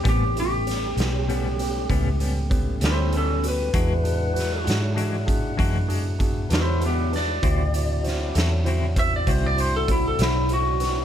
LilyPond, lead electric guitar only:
\new Staff \with { instrumentName = "Lead electric guitar" } { \time 12/8 \key a \mixolydian \tempo 4. = 65 g'8 g'2. r4 <e' c''>8 <cis' a'>8 b'8~ | b'4. r2. <e' c''>8 <b g'>8 d''8~ | d''4. r4 e''16 d''16 c''16 d''16 c''16 a'16 e'16 a'16 e'8 fis'4 | }